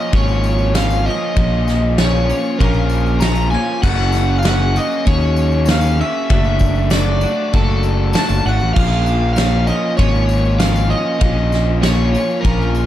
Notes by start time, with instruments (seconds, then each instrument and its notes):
Already playing: overdriven electric guitar A#2 F3 A#3 C#4 F4 D#5, synth bell D#6
0.13 fingered electric bass G#1, overdriven electric guitar A#2 F3 A#3 C#4 F4 C#5, kick, ride bell, tambourine
0.17 synth bell C#6
0.28 tambourine
0.44 tambourine
0.59 tambourine
0.75 overdriven electric guitar A#2 F3 A#3 C#4 F4 F5, synth bell F6, snare, ride bell, tambourine
0.90 tambourine
1.05 overdriven electric guitar A#2 F3 A#3 C#4 F4 D#5, tambourine
1.10 synth bell D#6
1.35 fingered electric bass A#1, overdriven electric guitar A#2 F3 A#3 C#4 F4, kick, ride bell
1.68 snare, tambourine
1.98 overdriven electric guitar A#2 F3 A#3 C#4 F4 C#5, snare, ride bell, tambourine
2.02 synth bell C#6
2.29 overdriven electric guitar A#2 F3 A#3 C#4 F4, tambourine
2.45 tambourine
2.59 fingered electric bass A#1, overdriven electric guitar A#2 F3 A#3 C#4 F4 A#4, kick, ride bell, tambourine
2.64 synth bell A#5
2.74 tambourine
2.89 tambourine
3.06 tambourine
3.20 overdriven electric guitar A#2 F3 A#3 C#4 F4 A#5, synth bell A#6, snare, ride bell, tambourine
3.35 tambourine
3.51 overdriven electric guitar A#2 F3 A#3 C#4 F4 G#5, synth bell G#6, tambourine
3.83 fingered electric bass F#1, overdriven electric guitar F#3 A#3 C#4 F#4 F#5, clean electric guitar G#4, synth bell F#6, kick, crash
4.12 snare, tambourine
4.38 overdriven electric guitar F5, synth bell F6
4.43 overdriven electric guitar F#3 A#3 C#4 F#4, clean electric guitar G#4, synth bell F#6, snare, ride bell, tambourine
4.49 overdriven electric guitar F#5
4.75 overdriven electric guitar F#3 A#3 C#4 F#4 D#5, clean electric guitar G#4, synth bell D#6, tambourine
4.91 tambourine
5.06 fingered electric bass D#2, overdriven electric guitar F#3 A#3 C#4 F#4 C#5, clean electric guitar G#4, synth bell C#6, kick, ride bell, tambourine
5.21 tambourine
5.36 tambourine
5.52 tambourine
5.65 overdriven electric guitar F#3 A#3 C#4 F#4, snare, ride bell, tambourine
5.70 clean electric guitar G#4, overdriven electric guitar F5, synth bell F6
5.81 tambourine
5.97 overdriven electric guitar F#3 A#3 C#4 F#4 E5, synth bell E6, tambourine
6.01 clean electric guitar G#4
6.30 fingered electric bass F#1, overdriven electric guitar F#3 A3 D4 F#4, kick, ride bell
6.44 tambourine
6.59 kick, tambourine
6.75 tambourine
6.90 overdriven electric guitar F#3 A3 D4 F#4 D5, synth bell D6, snare, ride bell, tambourine
7.21 overdriven electric guitar F#3 A3 D4 F#4, tambourine
7.53 fingered electric bass F#1, overdriven electric guitar F#3 A3 D4 F#4 A4, synth bell A5, kick, ride bell
7.83 tambourine
8.13 overdriven electric guitar F#3 A3 D4 F#4 A5, snare, ride bell, tambourine
8.18 synth bell A6
8.29 fingered electric bass F#1, tambourine
8.45 fingered electric bass G#1, overdriven electric guitar F#3 A3 D4 F#4 F#5, synth bell F#6, tambourine
8.60 fingered electric bass A1, tambourine
8.74 fingered electric bass A#1, overdriven electric guitar A#2 F5, kick, crash
8.78 overdriven electric guitar F3 A#3 C#4 F4, synth bell F6
9.06 tambourine
9.33 overdriven electric guitar F5, tambourine
9.38 overdriven electric guitar A#2 F3 A#3 C#4 F4, synth bell F6, snare, ride bell
9.67 overdriven electric guitar A#2 F3 A#3 C#4 F4 D#5, synth bell D#6, tambourine
9.97 fingered electric bass G#1, overdriven electric guitar A#2 F3 A#3 C#5, synth bell C#6, kick, ride bell, tambourine
10.01 overdriven electric guitar C#4 F4
10.15 tambourine
10.29 tambourine
10.45 tambourine
10.59 overdriven electric guitar A#2 F3 A#3 C#4 F4 F5, synth bell F6, snare, ride bell, tambourine
10.76 tambourine
10.88 overdriven electric guitar A#2 D#5, clean electric guitar F3, synth bell D#6
10.92 overdriven electric guitar F3 A#3 C#4 F4
11.18 fingered electric bass A#1, clean electric guitar F3 A#3 C#4 F4, kick, ride bell
11.23 overdriven electric guitar A#2 F3 A#3 C#4 F4
11.52 snare, tambourine
11.81 clean electric guitar F3 A#3 C#4 F4, overdriven electric guitar C#5, synth bell C#6, snare, ride bell, tambourine
11.85 overdriven electric guitar A#2 F3 A#3 C#4 F4
12.15 overdriven electric guitar A#2 F3 A#3 C#4 F4, tambourine
12.30 tambourine
12.41 fingered electric bass A#1, clean electric guitar F3, overdriven electric guitar A#4, ride bell
12.45 overdriven electric guitar A#2 F3 A#3 C#4 F4, synth bell A#5, kick, tambourine
12.61 tambourine
12.75 tambourine